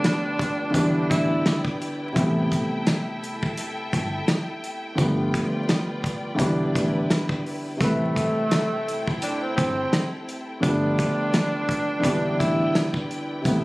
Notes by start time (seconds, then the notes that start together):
Already playing: D3 F3 G3 A3 B3 D4 F4 B4 D5 G5
0.04 cross-stick, snare, closed hi-hat
0.39 kick, closed hi-hat
0.70 D3 E3 G3, kick
0.74 E1 B3 D4 E4 B4 D5, closed hi-hat
1.10 A1 E4, kick, closed hi-hat
1.46 cross-stick, snare, closed hi-hat
1.65 kick
1.82 closed hi-hat
2.13 A1 C3 E3 G3, kick
2.17 A3 B3 A4 E5, closed hi-hat
2.52 kick, closed hi-hat
2.87 cross-stick, snare, closed hi-hat
3.24 closed hi-hat
3.43 kick
3.57 closed hi-hat
3.93 G1, kick, closed hi-hat
4.28 cross-stick, snare, closed hi-hat
4.64 closed hi-hat
4.95 G1 D3 F3 G3 F4 B4 D5, kick, closed hi-hat
5.00 A3 B3
5.34 kick, closed hi-hat
5.69 cross-stick, snare, closed hi-hat
6.04 kick, closed hi-hat
6.35 D3 E3 G3 E4 B4
6.39 E1 B3 D4, kick, closed hi-hat
6.75 A1, kick, closed hi-hat
7.10 cross-stick, snare, closed hi-hat
7.29 kick
7.46 open hi-hat
7.77 A1 C3 E3 G3, kick
7.82 A3 C4 E4 A4 B4 G5, closed hi-hat
8.16 kick, closed hi-hat
8.51 cross-stick, snare, closed hi-hat
8.88 closed hi-hat
9.07 kick
9.22 D4, closed hi-hat
9.43 C4
9.56 G1 C4, kick, closed hi-hat
9.93 cross-stick, snare, closed hi-hat
10.29 closed hi-hat
10.60 G1 D3 F3 G3 D4 F4 B4 D5 G5, kick, closed hi-hat
10.65 A3 B3
10.99 kick, closed hi-hat
11.34 cross-stick, snare, closed hi-hat
11.69 kick, closed hi-hat
12.00 D3 E3 G3
12.04 E1 B3 D4 E4 B4 D5, kick, closed hi-hat
12.39 A1 E4, kick, closed hi-hat
12.75 cross-stick, snare, closed hi-hat
12.94 kick
13.11 closed hi-hat
13.42 A1 C3 E3 G3, kick
13.46 A3 B3 A4 E5, closed hi-hat